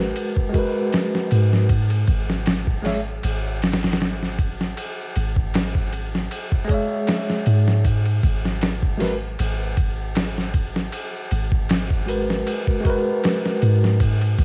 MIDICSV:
0, 0, Header, 1, 4, 480
1, 0, Start_track
1, 0, Key_signature, 5, "minor"
1, 0, Tempo, 769231
1, 1058, Time_signature, 4, 2, 24, 8
1, 9014, End_track
2, 0, Start_track
2, 0, Title_t, "Tine electric piano"
2, 0, Program_c, 0, 4
2, 0, Note_on_c, 0, 56, 64
2, 0, Note_on_c, 0, 66, 59
2, 0, Note_on_c, 0, 70, 55
2, 0, Note_on_c, 0, 71, 69
2, 300, Note_off_c, 0, 56, 0
2, 308, Note_on_c, 0, 56, 85
2, 309, Note_off_c, 0, 66, 0
2, 314, Note_off_c, 0, 70, 0
2, 320, Note_off_c, 0, 71, 0
2, 328, Note_on_c, 0, 66, 73
2, 347, Note_on_c, 0, 70, 74
2, 366, Note_on_c, 0, 71, 99
2, 1029, Note_off_c, 0, 56, 0
2, 1040, Note_off_c, 0, 66, 0
2, 1049, Note_off_c, 0, 70, 0
2, 1059, Note_off_c, 0, 71, 0
2, 1762, Note_on_c, 0, 56, 84
2, 1772, Note_on_c, 0, 68, 75
2, 1782, Note_on_c, 0, 73, 77
2, 1792, Note_on_c, 0, 76, 90
2, 1860, Note_off_c, 0, 56, 0
2, 1865, Note_off_c, 0, 68, 0
2, 1870, Note_off_c, 0, 73, 0
2, 1875, Note_off_c, 0, 76, 0
2, 4147, Note_on_c, 0, 56, 87
2, 4167, Note_on_c, 0, 68, 81
2, 4187, Note_on_c, 0, 73, 80
2, 4206, Note_on_c, 0, 76, 87
2, 4869, Note_off_c, 0, 56, 0
2, 4879, Note_off_c, 0, 68, 0
2, 4889, Note_off_c, 0, 73, 0
2, 4899, Note_off_c, 0, 76, 0
2, 5601, Note_on_c, 0, 56, 77
2, 5611, Note_on_c, 0, 66, 70
2, 5621, Note_on_c, 0, 70, 72
2, 5632, Note_on_c, 0, 71, 89
2, 5699, Note_off_c, 0, 56, 0
2, 5704, Note_off_c, 0, 66, 0
2, 5710, Note_off_c, 0, 70, 0
2, 5715, Note_off_c, 0, 71, 0
2, 7524, Note_on_c, 0, 56, 65
2, 7534, Note_on_c, 0, 66, 59
2, 7543, Note_on_c, 0, 70, 60
2, 7551, Note_on_c, 0, 71, 72
2, 7982, Note_off_c, 0, 56, 0
2, 7989, Note_off_c, 0, 66, 0
2, 7989, Note_on_c, 0, 56, 86
2, 7994, Note_off_c, 0, 70, 0
2, 7998, Note_off_c, 0, 71, 0
2, 8009, Note_on_c, 0, 66, 81
2, 8028, Note_on_c, 0, 70, 81
2, 8048, Note_on_c, 0, 71, 99
2, 8710, Note_off_c, 0, 56, 0
2, 8720, Note_off_c, 0, 66, 0
2, 8729, Note_off_c, 0, 70, 0
2, 8740, Note_off_c, 0, 71, 0
2, 9014, End_track
3, 0, Start_track
3, 0, Title_t, "808-style bass"
3, 0, Program_c, 1, 38
3, 0, Note_on_c, 1, 32, 91
3, 79, Note_off_c, 1, 32, 0
3, 823, Note_on_c, 1, 44, 87
3, 1279, Note_off_c, 1, 44, 0
3, 1299, Note_on_c, 1, 32, 91
3, 1997, Note_off_c, 1, 32, 0
3, 2022, Note_on_c, 1, 32, 85
3, 2959, Note_off_c, 1, 32, 0
3, 3222, Note_on_c, 1, 32, 99
3, 3919, Note_off_c, 1, 32, 0
3, 4660, Note_on_c, 1, 44, 86
3, 5118, Note_off_c, 1, 44, 0
3, 5140, Note_on_c, 1, 32, 90
3, 5838, Note_off_c, 1, 32, 0
3, 5862, Note_on_c, 1, 32, 89
3, 6799, Note_off_c, 1, 32, 0
3, 7062, Note_on_c, 1, 32, 96
3, 7759, Note_off_c, 1, 32, 0
3, 8502, Note_on_c, 1, 44, 83
3, 8959, Note_off_c, 1, 44, 0
3, 8980, Note_on_c, 1, 32, 97
3, 9014, Note_off_c, 1, 32, 0
3, 9014, End_track
4, 0, Start_track
4, 0, Title_t, "Drums"
4, 0, Note_on_c, 9, 38, 46
4, 60, Note_off_c, 9, 38, 0
4, 99, Note_on_c, 9, 51, 82
4, 161, Note_off_c, 9, 51, 0
4, 229, Note_on_c, 9, 36, 86
4, 291, Note_off_c, 9, 36, 0
4, 337, Note_on_c, 9, 51, 67
4, 338, Note_on_c, 9, 36, 95
4, 400, Note_off_c, 9, 51, 0
4, 401, Note_off_c, 9, 36, 0
4, 577, Note_on_c, 9, 51, 81
4, 586, Note_on_c, 9, 38, 114
4, 640, Note_off_c, 9, 51, 0
4, 648, Note_off_c, 9, 38, 0
4, 717, Note_on_c, 9, 38, 50
4, 779, Note_off_c, 9, 38, 0
4, 817, Note_on_c, 9, 51, 65
4, 879, Note_off_c, 9, 51, 0
4, 956, Note_on_c, 9, 38, 46
4, 1018, Note_off_c, 9, 38, 0
4, 1057, Note_on_c, 9, 51, 85
4, 1058, Note_on_c, 9, 36, 99
4, 1119, Note_off_c, 9, 51, 0
4, 1120, Note_off_c, 9, 36, 0
4, 1187, Note_on_c, 9, 51, 43
4, 1249, Note_off_c, 9, 51, 0
4, 1295, Note_on_c, 9, 51, 69
4, 1298, Note_on_c, 9, 36, 102
4, 1357, Note_off_c, 9, 51, 0
4, 1360, Note_off_c, 9, 36, 0
4, 1434, Note_on_c, 9, 38, 45
4, 1497, Note_off_c, 9, 38, 0
4, 1535, Note_on_c, 9, 51, 87
4, 1544, Note_on_c, 9, 38, 108
4, 1597, Note_off_c, 9, 51, 0
4, 1606, Note_off_c, 9, 38, 0
4, 1667, Note_on_c, 9, 36, 82
4, 1730, Note_off_c, 9, 36, 0
4, 1777, Note_on_c, 9, 46, 77
4, 1786, Note_on_c, 9, 38, 39
4, 1840, Note_off_c, 9, 46, 0
4, 1849, Note_off_c, 9, 38, 0
4, 2018, Note_on_c, 9, 51, 83
4, 2080, Note_off_c, 9, 51, 0
4, 2260, Note_on_c, 9, 51, 68
4, 2269, Note_on_c, 9, 38, 86
4, 2321, Note_off_c, 9, 51, 0
4, 2321, Note_on_c, 9, 51, 70
4, 2330, Note_off_c, 9, 38, 0
4, 2330, Note_on_c, 9, 38, 91
4, 2384, Note_off_c, 9, 51, 0
4, 2388, Note_on_c, 9, 51, 58
4, 2392, Note_off_c, 9, 38, 0
4, 2397, Note_on_c, 9, 38, 80
4, 2444, Note_off_c, 9, 51, 0
4, 2444, Note_on_c, 9, 51, 65
4, 2453, Note_off_c, 9, 38, 0
4, 2453, Note_on_c, 9, 38, 82
4, 2498, Note_off_c, 9, 51, 0
4, 2498, Note_on_c, 9, 51, 83
4, 2507, Note_off_c, 9, 38, 0
4, 2507, Note_on_c, 9, 38, 105
4, 2561, Note_off_c, 9, 51, 0
4, 2569, Note_off_c, 9, 38, 0
4, 2638, Note_on_c, 9, 38, 35
4, 2700, Note_off_c, 9, 38, 0
4, 2737, Note_on_c, 9, 36, 95
4, 2737, Note_on_c, 9, 51, 71
4, 2800, Note_off_c, 9, 36, 0
4, 2800, Note_off_c, 9, 51, 0
4, 2875, Note_on_c, 9, 38, 44
4, 2937, Note_off_c, 9, 38, 0
4, 2977, Note_on_c, 9, 51, 87
4, 3040, Note_off_c, 9, 51, 0
4, 3217, Note_on_c, 9, 51, 70
4, 3280, Note_off_c, 9, 51, 0
4, 3347, Note_on_c, 9, 36, 88
4, 3409, Note_off_c, 9, 36, 0
4, 3456, Note_on_c, 9, 51, 88
4, 3465, Note_on_c, 9, 38, 113
4, 3519, Note_off_c, 9, 51, 0
4, 3528, Note_off_c, 9, 38, 0
4, 3587, Note_on_c, 9, 36, 87
4, 3650, Note_off_c, 9, 36, 0
4, 3698, Note_on_c, 9, 51, 68
4, 3760, Note_off_c, 9, 51, 0
4, 3837, Note_on_c, 9, 38, 44
4, 3899, Note_off_c, 9, 38, 0
4, 3937, Note_on_c, 9, 51, 81
4, 3999, Note_off_c, 9, 51, 0
4, 4067, Note_on_c, 9, 36, 88
4, 4129, Note_off_c, 9, 36, 0
4, 4175, Note_on_c, 9, 51, 67
4, 4177, Note_on_c, 9, 36, 93
4, 4237, Note_off_c, 9, 51, 0
4, 4239, Note_off_c, 9, 36, 0
4, 4414, Note_on_c, 9, 51, 85
4, 4423, Note_on_c, 9, 38, 110
4, 4477, Note_off_c, 9, 51, 0
4, 4485, Note_off_c, 9, 38, 0
4, 4554, Note_on_c, 9, 38, 46
4, 4616, Note_off_c, 9, 38, 0
4, 4655, Note_on_c, 9, 51, 68
4, 4718, Note_off_c, 9, 51, 0
4, 4791, Note_on_c, 9, 38, 45
4, 4854, Note_off_c, 9, 38, 0
4, 4896, Note_on_c, 9, 51, 84
4, 4897, Note_on_c, 9, 36, 106
4, 4958, Note_off_c, 9, 51, 0
4, 4959, Note_off_c, 9, 36, 0
4, 5026, Note_on_c, 9, 51, 43
4, 5089, Note_off_c, 9, 51, 0
4, 5138, Note_on_c, 9, 36, 99
4, 5138, Note_on_c, 9, 51, 69
4, 5200, Note_off_c, 9, 36, 0
4, 5200, Note_off_c, 9, 51, 0
4, 5275, Note_on_c, 9, 38, 46
4, 5338, Note_off_c, 9, 38, 0
4, 5376, Note_on_c, 9, 51, 85
4, 5384, Note_on_c, 9, 38, 109
4, 5438, Note_off_c, 9, 51, 0
4, 5447, Note_off_c, 9, 38, 0
4, 5507, Note_on_c, 9, 36, 87
4, 5570, Note_off_c, 9, 36, 0
4, 5617, Note_on_c, 9, 46, 86
4, 5626, Note_on_c, 9, 38, 40
4, 5680, Note_off_c, 9, 46, 0
4, 5689, Note_off_c, 9, 38, 0
4, 5858, Note_on_c, 9, 51, 86
4, 5921, Note_off_c, 9, 51, 0
4, 6096, Note_on_c, 9, 51, 69
4, 6097, Note_on_c, 9, 36, 98
4, 6158, Note_off_c, 9, 51, 0
4, 6159, Note_off_c, 9, 36, 0
4, 6334, Note_on_c, 9, 51, 85
4, 6343, Note_on_c, 9, 38, 109
4, 6397, Note_off_c, 9, 51, 0
4, 6405, Note_off_c, 9, 38, 0
4, 6476, Note_on_c, 9, 38, 38
4, 6538, Note_off_c, 9, 38, 0
4, 6575, Note_on_c, 9, 51, 68
4, 6577, Note_on_c, 9, 36, 94
4, 6638, Note_off_c, 9, 51, 0
4, 6639, Note_off_c, 9, 36, 0
4, 6715, Note_on_c, 9, 38, 48
4, 6777, Note_off_c, 9, 38, 0
4, 6816, Note_on_c, 9, 51, 81
4, 6878, Note_off_c, 9, 51, 0
4, 7058, Note_on_c, 9, 51, 69
4, 7120, Note_off_c, 9, 51, 0
4, 7188, Note_on_c, 9, 36, 82
4, 7250, Note_off_c, 9, 36, 0
4, 7297, Note_on_c, 9, 51, 86
4, 7305, Note_on_c, 9, 38, 111
4, 7359, Note_off_c, 9, 51, 0
4, 7368, Note_off_c, 9, 38, 0
4, 7428, Note_on_c, 9, 36, 89
4, 7490, Note_off_c, 9, 36, 0
4, 7540, Note_on_c, 9, 51, 69
4, 7602, Note_off_c, 9, 51, 0
4, 7675, Note_on_c, 9, 38, 45
4, 7738, Note_off_c, 9, 38, 0
4, 7779, Note_on_c, 9, 51, 83
4, 7841, Note_off_c, 9, 51, 0
4, 7908, Note_on_c, 9, 36, 84
4, 7970, Note_off_c, 9, 36, 0
4, 8017, Note_on_c, 9, 51, 70
4, 8018, Note_on_c, 9, 36, 95
4, 8079, Note_off_c, 9, 51, 0
4, 8080, Note_off_c, 9, 36, 0
4, 8259, Note_on_c, 9, 51, 84
4, 8267, Note_on_c, 9, 38, 112
4, 8321, Note_off_c, 9, 51, 0
4, 8330, Note_off_c, 9, 38, 0
4, 8396, Note_on_c, 9, 38, 50
4, 8459, Note_off_c, 9, 38, 0
4, 8498, Note_on_c, 9, 51, 67
4, 8560, Note_off_c, 9, 51, 0
4, 8636, Note_on_c, 9, 38, 49
4, 8699, Note_off_c, 9, 38, 0
4, 8736, Note_on_c, 9, 51, 87
4, 8738, Note_on_c, 9, 36, 101
4, 8798, Note_off_c, 9, 51, 0
4, 8800, Note_off_c, 9, 36, 0
4, 8870, Note_on_c, 9, 51, 42
4, 8932, Note_off_c, 9, 51, 0
4, 8976, Note_on_c, 9, 51, 75
4, 8977, Note_on_c, 9, 36, 92
4, 9014, Note_off_c, 9, 36, 0
4, 9014, Note_off_c, 9, 51, 0
4, 9014, End_track
0, 0, End_of_file